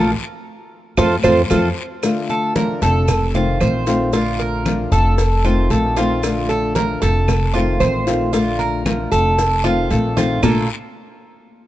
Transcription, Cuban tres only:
0.97 1.15 F4 loud
0.97 1.15 A4 loud
0.97 1.15 C5 medium
1.24 1.41 F4 medium
1.24 1.41 A4 medium
1.24 1.41 C5 loud
1.50 1.67 F4 loud
1.50 1.67 A4 medium
1.50 1.67 C5 medium
2.30 2.55 A4 medium
2.56 2.81 A#4 medium
2.83 3.33 A4 medium
3.35 3.60 F4 medium
3.61 4.12 C5 medium
4.13 4.39 F4 medium
4.39 4.90 A#4 medium
4.92 5.43 A4 medium
5.45 5.70 F4 medium
5.71 5.96 A4 medium
5.97 6.48 F4 medium
6.49 6.75 A4 medium
6.75 7.01 A#4 medium
7.02 7.53 A4 medium
7.54 7.80 F4 medium
7.80 8.31 C5 medium
8.33 8.59 F4 medium
8.59 9.10 A#4 medium
9.12 9.63 A4 medium
9.64 9.90 F4 loud
9.90 10.16 A4 medium
10.17 10.42 F4 medium
10.42 10.67 A#3 medium
10.42 10.67 F4 medium
10.42 10.68 A4 medium

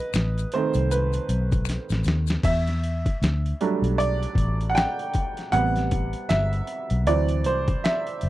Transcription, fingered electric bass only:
0.14 0.44 A1 loud
0.75 1.18 C2 medium
1.29 1.77 B1 medium
1.90 2.03 A1 medium
2.05 2.36 D#2 medium
2.44 3.05 E2 loud
3.22 3.52 D2 medium
3.82 4.25 B1 medium
4.36 4.84 A1 loud
5.53 6.13 A1 loud
6.30 6.60 G1 loud
6.91 7.07 B1 loud
7.07 7.45 D2 loud
7.45 7.75 C2 medium
8.23 8.29 F#1 medium

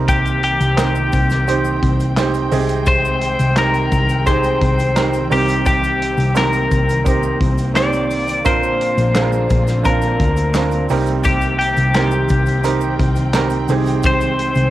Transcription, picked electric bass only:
0.00 0.56 C2 medium
0.61 1.09 C2 loud
1.13 1.78 C2 medium
1.82 2.48 C2 medium
2.52 3.35 C2 loud
3.40 3.88 C2 medium
3.92 4.58 C2 loud
4.61 5.27 C2 medium
5.31 6.15 C2 medium
6.18 6.67 C2 loud
6.71 7.37 C2 medium
7.41 8.46 C2 medium
8.46 8.94 A#1 loud
8.97 9.46 A#1 medium
9.51 10.16 A#1 medium
10.20 10.86 D2 medium
10.90 11.73 C2 medium
11.77 12.26 C2 loud
12.30 12.96 C2 loud
12.99 13.65 C2 medium
13.69 14.52 C2 loud
14.56 14.70 C2 medium

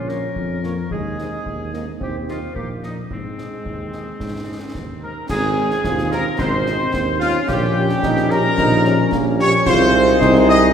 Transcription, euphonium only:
0.00 0.60 C#4 medium
0.64 0.76 A#3 medium
0.91 1.70 G#3 medium
1.74 1.86 A#3 medium
2.00 2.52 C4 medium
2.55 2.88 A#3 medium
3.10 4.98 G#3 medium
5.84 6.40 F4 medium
6.39 6.95 D#4 medium
6.94 7.23 C4 medium
7.21 8.02 C#4 medium
8.03 8.29 D#4 loud
8.31 8.43 C#4 loud
8.59 8.84 D#4 loud
8.85 8.98 C#4 medium
9.12 9.38 A#3 loud
9.39 9.52 G4 loud
9.67 10.23 F4 loud
10.21 10.73 D#4 loud

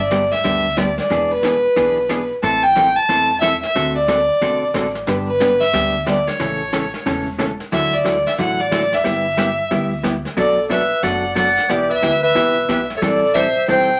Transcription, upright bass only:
0.00 0.31 G1 medium
0.45 0.98 D2 medium
1.10 1.63 E1 medium
1.76 2.29 B1 medium
2.43 2.96 A1 medium
3.09 3.62 E1 medium
3.75 4.28 D2 medium
4.41 4.69 B1 medium
4.74 5.02 A1 medium
5.07 5.60 G1 medium
5.73 6.26 D2 medium
6.40 6.93 A1 medium
7.06 7.59 E1 medium
7.72 8.25 D2 medium
8.38 8.91 A1 medium
9.05 9.58 G1 medium
9.71 10.24 D2 medium
10.37 10.90 B1 medium
11.03 11.56 F#1 medium
11.70 11.96 B1 medium
12.02 12.30 D2 medium
12.35 12.63 C2 medium
12.68 12.96 B1 medium
13.02 13.55 A1 medium
13.68 13.96 B1 medium

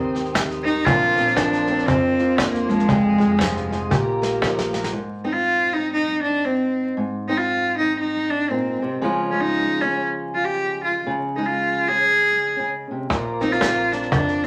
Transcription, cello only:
0.00 0.11 C4 medium
0.64 0.86 D#4 loud
0.85 1.38 F4 loud
1.36 1.88 D4 loud
1.86 2.39 C4 medium
2.38 2.70 A#3 medium
2.68 3.43 G#3 loud
3.41 3.72 F3 medium
5.25 5.34 D#4 medium
5.33 5.75 F4 medium
5.73 5.93 D#4 medium
5.94 6.23 D#4 medium
6.23 6.46 D4 medium
6.45 6.87 C4 medium
7.28 7.39 D#4 medium
7.37 7.78 F4 medium
7.78 7.98 D#4 medium
8.00 8.32 D#4 medium
8.30 8.51 D4 medium
8.49 8.91 C4 medium
9.31 9.42 C#4 medium
9.41 9.83 D#4 medium
9.81 10.03 C#4 medium
10.35 10.46 F4 medium
10.45 10.84 G4 medium
10.84 11.04 F4 medium
11.36 11.48 D#4 medium
11.46 11.90 F4 medium
11.88 12.60 G#4 loud
13.42 13.54 D#4 medium
13.52 13.93 F4 medium
13.92 14.12 D4 medium
14.13 14.45 D4 medium
14.44 14.47 C4 medium

